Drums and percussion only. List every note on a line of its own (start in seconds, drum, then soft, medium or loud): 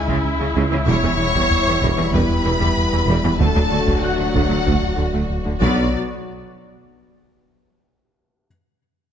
0.09 taiko medium
0.87 taiko loud
1.04 taiko low medium
1.35 taiko medium
1.51 taiko low medium
1.82 taiko medium
2.14 taiko medium
2.61 taiko medium
3.40 taiko medium
3.56 taiko low medium
3.88 taiko medium
4.03 taiko low medium
4.35 taiko medium
4.67 taiko medium
5.61 taiko loud